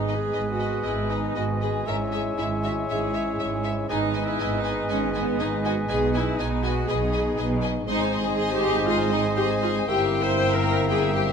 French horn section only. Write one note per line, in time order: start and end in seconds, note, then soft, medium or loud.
0.00 1.83 B3 soft
0.00 1.32 G#4 soft
1.36 1.87 F#4 soft
1.88 2.36 C#4 soft
1.88 2.36 E4 soft
2.37 2.86 C#4 medium
2.37 2.86 E4 soft
2.87 3.87 C#4 medium
2.87 3.87 E4 medium
3.89 5.39 B3 medium
3.89 5.39 D#4 medium
5.40 5.88 B3 medium
5.40 5.88 D#4 medium
5.90 6.38 B3 soft
5.90 6.38 D#4 medium
6.41 6.75 B3 medium
6.41 6.75 D#4 medium
6.89 7.86 B3 medium
6.89 7.86 D#4 medium
7.87 9.84 C4 medium
7.87 9.84 D#4 medium
9.88 11.32 C4 medium
9.88 11.32 E4 medium